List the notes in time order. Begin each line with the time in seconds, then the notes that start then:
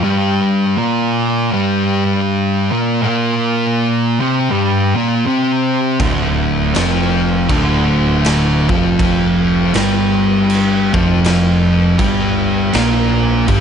0.03 G2 G3
0.77 A#2 A#3
1.53 G2 G3
2.72 A#2 A#3
3.02 A#2 A#3
4.21 C3 C4
4.51 G2 G3
4.96 A#2 A#3
5.27 C3 C4
6.00 D1 D2 D3, kick, crash
6.75 F1 F2 F3, snare, crash
7.49 D1 D2 D3, kick, crash
8.25 snare, crash
8.69 F1 F2 F3, kick
8.99 kick, crash
9.74 G1 G2 G3, snare, crash
10.50 crash
10.93 F1 F2 F3, kick
11.24 snare, crash
11.99 G1 G2 G3, kick, crash
12.73 A#1 A#2 A#3, snare, crash
13.48 G1 G2 G3, kick, crash